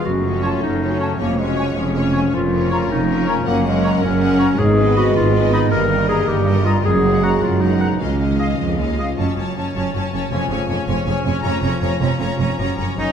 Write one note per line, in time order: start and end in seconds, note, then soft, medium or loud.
0.04 0.55 F#1 medium
0.04 0.55 F#2 soft
0.04 1.21 F#2 soft
0.04 2.29 C#3 soft
0.04 1.15 A3 soft
0.04 2.30 C#4 soft
0.04 0.40 F#4 medium
0.04 2.30 F#4 soft
0.23 1.21 F#3 soft
0.23 0.79 C#4 soft
0.23 0.80 A4 soft
0.23 0.80 C#5 soft
0.43 0.62 F4 medium
0.43 1.20 A4 soft
0.43 0.49 C#5 soft
0.43 0.52 A5 soft
0.62 1.12 F#1 soft
0.62 1.12 F#2 medium
0.62 1.01 D#4 medium
0.62 1.21 F#4 soft
0.80 1.18 C#4 soft
0.80 1.94 C#4 soft
0.80 1.18 A4 soft
0.80 1.17 C#5 soft
0.99 1.21 C#3 soft
0.99 1.19 C#4 medium
0.99 1.07 C#5 soft
0.99 1.09 A5 soft
1.18 1.70 F1 soft
1.18 2.32 F2 soft
1.18 1.69 F2 medium
1.18 2.33 G#3 soft
1.18 1.40 A#3 medium
1.18 1.38 C#4 soft
1.18 1.36 C#5 soft
1.18 1.38 C#5 soft
1.37 2.35 G#3 soft
1.37 1.78 G#3 medium
1.37 1.94 C#4 soft
1.37 1.93 C#5 soft
1.37 1.94 C#5 soft
1.56 1.63 C#5 soft
1.56 2.69 C#5 soft
1.56 1.66 G#5 soft
1.76 2.26 F1 medium
1.76 2.26 F2 medium
1.76 2.36 C#4 medium
1.76 2.35 G#4 soft
1.94 3.07 C#4 soft
1.94 2.33 C#4 soft
1.94 2.32 C#5 soft
2.13 3.26 F3 soft
2.13 2.20 C#5 soft
2.13 2.23 G#5 soft
2.33 2.83 F1 medium
2.33 3.48 F2 soft
2.33 2.83 F2 medium
2.33 4.55 C#3 soft
2.33 4.59 A#3 soft
2.33 4.55 C#4 soft
2.33 3.46 F4 soft
2.33 2.71 F4 medium
2.52 3.63 A#3 soft
2.52 3.08 C#4 soft
2.52 3.08 A#4 soft
2.52 3.07 C#5 soft
2.71 2.90 F4 medium
2.71 2.77 C#5 soft
2.71 3.82 C#5 soft
2.71 2.80 A#5 soft
2.89 3.40 F1 medium
2.89 3.40 F2 medium
2.89 3.30 D#4 medium
2.89 4.01 A#4 soft
3.08 4.60 C#4 soft
3.08 3.46 C#4 soft
3.08 3.44 A#4 soft
3.08 3.46 C#5 soft
3.27 3.47 F3 soft
3.27 3.49 C#4 medium
3.27 3.34 C#5 soft
3.27 3.36 A#5 medium
3.45 3.96 F#1 medium
3.45 4.60 F#2 medium
3.45 3.96 F#2 medium
3.45 3.66 A#3 medium
3.45 3.65 C#4 soft
3.45 4.57 F#4 soft
3.45 3.63 A#4 soft
3.45 3.63 F#5 soft
3.64 4.03 G#3 medium
3.64 4.60 A#3 soft
3.64 4.21 C#4 soft
3.64 4.20 A#4 soft
3.64 4.19 F#5 soft
3.83 4.60 C#5 soft
3.83 3.90 C#5 medium
3.83 3.93 A#5 medium
4.02 4.52 F#1 medium
4.02 4.53 F#2 medium
4.02 4.60 C#4 medium
4.02 4.60 A#4 soft
4.20 4.58 C#4 soft
4.20 4.60 F#4 soft
4.20 4.58 A#4 soft
4.20 4.57 F#5 medium
4.39 4.60 C#3 soft
4.39 4.46 C#5 soft
4.39 4.49 A#5 medium
4.58 5.09 G#1 medium
4.58 5.73 G#2 medium
4.58 5.09 G#2 medium
4.58 5.12 G#2 medium
4.58 6.69 D#3 medium
4.58 5.69 G#3 medium
4.58 5.72 B3 medium
4.58 5.72 D#4 medium
4.58 4.96 G#4 medium
4.77 5.32 B3 soft
4.77 5.33 B3 soft
4.77 5.32 B4 medium
4.77 5.32 D#5 medium
4.95 5.15 F#4 medium
4.95 5.72 B4 soft
4.95 5.03 D#5 medium
4.95 5.06 B5 medium
5.15 5.65 G#1 medium
5.15 5.65 G#2 medium
5.15 6.45 D#4 soft
5.15 5.52 F4 medium
5.33 5.73 B3 soft
5.33 5.71 B3 medium
5.33 5.70 B4 soft
5.33 5.70 D#5 medium
5.52 5.73 D#3 soft
5.52 5.71 D#4 medium
5.52 5.60 D#5 medium
5.52 5.62 B5 medium
5.70 6.21 G1 medium
5.70 6.86 G2 medium
5.70 6.21 G2 medium
5.70 5.90 G3 medium
5.70 6.69 G3 medium
5.70 6.68 A#3 medium
5.70 6.68 G4 medium
5.70 5.89 A#4 medium
5.70 6.08 A#4 medium
5.70 5.88 D#5 medium
5.89 6.45 G3 soft
5.89 7.02 A#3 soft
5.89 6.46 A#4 soft
5.89 6.45 D#5 medium
6.08 6.86 G4 soft
6.08 6.29 G#4 medium
6.08 6.16 D#5 medium
6.08 6.18 A#5 medium
6.27 6.79 G1 medium
6.27 6.78 G2 medium
6.27 6.66 G4 medium
6.27 7.40 A#4 soft
6.46 6.84 G3 soft
6.46 6.86 D#4 soft
6.46 6.85 A#4 soft
6.46 6.84 D#5 medium
6.65 6.86 G3 soft
6.65 6.84 F4 medium
6.65 6.73 D#5 medium
6.65 6.75 A#5 medium
6.84 7.36 F#1 medium
6.84 8.02 F#2 medium
6.84 7.35 F#2 medium
6.84 7.97 F#3 medium
6.84 7.97 G#3 medium
6.84 7.58 A#3 medium
6.84 7.97 F#4 medium
6.84 7.25 G#4 medium
7.03 7.60 G#3 soft
7.03 8.02 A#3 soft
7.03 7.60 A#4 soft
7.03 7.60 F#5 soft
7.22 7.42 F#4 medium
7.22 8.38 G#4 soft
7.22 7.30 F#5 soft
7.22 7.32 A#5 medium
7.41 7.94 F#1 medium
7.41 7.94 F#2 medium
7.41 7.63 F4 medium
7.41 8.02 A#4 soft
7.61 8.00 B2 soft
7.61 7.98 G#3 soft
7.61 8.00 D#4 medium
7.61 8.02 F#4 soft
7.61 8.00 A#4 soft
7.61 8.00 F#5 soft
7.80 7.99 C#3 soft
7.80 7.88 F#5 soft
7.80 7.90 A#5 soft
8.00 8.52 C#2 soft
8.00 9.19 C#3 soft
8.00 8.99 D#3 soft
8.00 8.18 G#3 soft
8.00 8.97 G#3 soft
8.00 8.96 C#4 soft
8.00 8.58 C#4 medium
8.00 8.98 F4 soft
8.00 8.19 D#5 soft
8.00 8.19 F5 soft
8.19 8.77 G#3 soft
8.19 9.19 D#4 soft
8.19 8.78 D#5 soft
8.19 8.77 F5 soft
8.39 9.19 G#4 soft
8.39 8.47 D#5 soft
8.39 8.48 F5 soft
8.58 9.12 C#2 soft
8.58 8.77 F2 soft
8.58 9.19 D#5 soft
8.78 8.98 D#2 soft
8.78 9.17 G#3 soft
8.78 9.19 F4 soft
8.78 9.18 D#5 soft
8.78 9.17 F5 soft
8.98 9.18 C#2 soft
8.98 9.19 G#3 soft
8.98 9.06 D#5 soft
8.98 9.08 F5 soft
9.17 9.26 F#1 soft
9.17 10.33 F#2 soft
9.17 9.26 F#2 soft
9.17 9.36 C#4 soft
9.17 9.36 C#5 soft
9.17 9.37 A5 soft
9.36 9.45 F#1 soft
9.36 9.45 F#2 soft
9.36 9.55 C#4 soft
9.36 9.93 F#4 soft
9.36 9.54 C#5 soft
9.36 9.56 A5 soft
9.56 9.65 F#1 soft
9.56 9.64 F#2 soft
9.56 10.12 C#4 soft
9.56 9.74 C#4 soft
9.56 9.73 C#5 soft
9.56 9.75 A5 soft
9.74 9.84 F#1 soft
9.74 9.83 F#2 soft
9.74 10.33 C#3 soft
9.74 9.93 C#4 soft
9.74 9.92 C#5 soft
9.74 9.94 A5 soft
9.94 10.02 F#1 soft
9.94 10.02 F#2 soft
9.94 10.12 C#4 soft
9.94 10.34 F#4 soft
9.94 10.12 C#5 soft
9.94 10.13 A5 soft
10.13 10.21 F#1 soft
10.13 10.21 F#2 soft
10.13 10.30 C#4 soft
10.13 10.68 C#4 soft
10.13 10.30 C#5 soft
10.13 10.32 A5 soft
10.31 10.40 F1 soft
10.31 11.43 F2 soft
10.31 10.40 F2 medium
10.31 10.49 C#4 soft
10.31 10.49 C#5 soft
10.31 10.50 G#5 soft
10.50 10.58 F1 soft
10.50 10.59 F2 soft
10.50 10.68 C#4 soft
10.50 11.06 G#4 soft
10.50 10.67 C#5 soft
10.50 10.68 G#5 soft
10.68 10.76 F1 soft
10.68 10.77 F2 soft
10.68 11.25 C#4 soft
10.68 10.87 C#4 soft
10.68 10.86 C#5 soft
10.68 10.86 G#5 soft
10.87 10.95 F1 soft
10.87 10.96 F2 medium
10.87 12.00 F3 soft
10.87 11.06 C#4 soft
10.87 11.05 C#5 soft
10.87 11.04 G#5 soft
11.05 11.15 F1 soft
11.05 11.15 F2 soft
11.05 11.25 C#4 soft
11.05 11.46 G#4 soft
11.05 11.24 C#5 soft
11.05 11.23 G#5 soft
11.24 11.33 F1 soft
11.24 11.34 F2 soft
11.24 11.81 C#4 soft
11.24 11.44 C#4 soft
11.24 11.42 C#5 soft
11.24 11.44 G#5 soft
11.43 11.52 F1 medium
11.43 12.60 F2 medium
11.43 11.53 F2 medium
11.43 11.62 C#4 medium
11.43 11.62 C#5 soft
11.43 11.61 A#5 medium
11.62 11.71 F1 soft
11.62 11.72 F2 soft
11.62 11.82 C#4 soft
11.62 11.80 C#5 soft
11.62 11.80 A#5 soft
11.81 11.90 F1 medium
11.81 11.90 F2 medium
11.81 12.39 C#4 soft
11.81 12.01 C#4 soft
11.81 12.00 C#5 soft
11.81 11.99 A#5 soft
12.01 12.09 F1 soft
12.01 12.09 F2 medium
12.01 12.61 F3 soft
12.01 12.19 C#4 soft
12.01 12.19 C#5 soft
12.01 12.18 A#5 soft
12.19 12.28 F1 medium
12.19 12.28 F2 soft
12.19 12.39 C#4 soft
12.19 12.38 C#5 soft
12.19 12.38 A#5 soft
12.39 12.48 F1 soft
12.39 12.47 F2 soft
12.39 12.97 C#4 soft
12.39 12.58 C#4 soft
12.39 12.58 C#5 soft
12.39 12.58 A#5 soft
12.59 12.68 F#1 soft
12.59 13.12 F#2 soft
12.59 12.67 F#2 soft
12.59 12.76 C#4 soft
12.59 12.77 C#5 soft
12.59 12.77 A#5 soft
12.78 12.87 F#1 soft
12.78 12.87 F#2 soft
12.78 12.96 C#4 soft
12.78 12.97 C#5 soft
12.78 12.96 A#5 soft
12.97 13.06 F#1 soft
12.97 13.06 F#2 soft
12.97 13.12 C#4 soft
12.97 13.12 D#4 soft
12.97 13.12 D#4 medium
12.97 13.12 C#5 soft
12.97 13.12 D#5 soft
12.97 13.12 A#5 soft